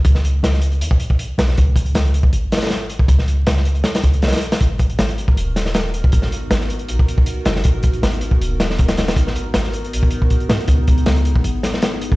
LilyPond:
<<
  \new Staff \with { instrumentName = "Ambient pad" } { \time 4/4 \key gis \minor \tempo 4 = 158 r1 | r1 | r1 | r1 |
r8. <b dis' fis' ais'>2.~ <b dis' fis' ais'>16 | r1 | r8. <b dis' fis' ais'>2.~ <b dis' fis' ais'>16 | r1 | }
  \new Staff \with { instrumentName = "808-style bass" } { \clef bass \time 4/4 \key gis \minor cis,4 cis,4 e,8 r4 b,,8 | cis,4 cis,4 gis,,2 | cis,4 cis,4 r8 cis,8 b,,8 r8 | gis,,4 gis,,4 dis,,2 |
gis,,4 gis,,4 b,,8 r4 fis,,8 | gis,,4 gis,,4 dis,,2 | gis,,4 gis,,4 b,,8 r4 gis,8 | cis,4 cis,4 gis,,2 | }
  \new DrumStaff \with { instrumentName = "Drums" } \drummode { \time 4/4 <hh bd>16 sn16 hh8 <hh sn>16 sn16 hh16 hh16 hh16 bd16 hh16 bd16 hh8 <hh sn>16 sn16 | <hh bd>8 <hh bd>16 hh16 <hh sn>16 hh16 hh16 bd16 hh8 <hh sn>32 <hh sn>32 <hh sn>32 <hh sn>32 <hh sn>8 hh16 bd16 | <hh bd>16 sn16 hh8 <hh sn>16 sn16 hh16 hh16 <hh sn>16 <hh sn>16 <hh bd>16 hh16 <hh sn>32 <hh sn>32 <hh sn>32 <hh sn>32 hh16 <hh sn>16 | <hh bd>8 <hh bd>16 hh16 <hh sn>16 hh16 hh16 bd16 hh8 <hh sn>16 sn16 <hh sn>8 hh16 bd16 |
<hh bd>16 sn16 hh8 <hh sn>16 sn16 hh16 hh16 hh16 bd16 hh16 bd16 hh8 <hh sn>16 sn16 | <hh bd>8 <hh bd>16 hh16 <hh sn>16 hh16 hh16 bd16 hh8 <hh sn>16 sn16 <hh bd>16 <hh sn>16 <hh sn>16 <hh sn>16 | <hh bd>16 sn16 hh8 <hh sn>16 sn16 hh16 hh16 hh16 bd16 hh16 bd16 <hh bd>16 hh16 <hh sn>16 hh16 | <hh bd>8 <hh bd>16 hh16 <hh sn>16 hh16 hh16 bd16 hh8 <hh sn>16 sn16 <hh sn>8 hh16 bd16 | }
>>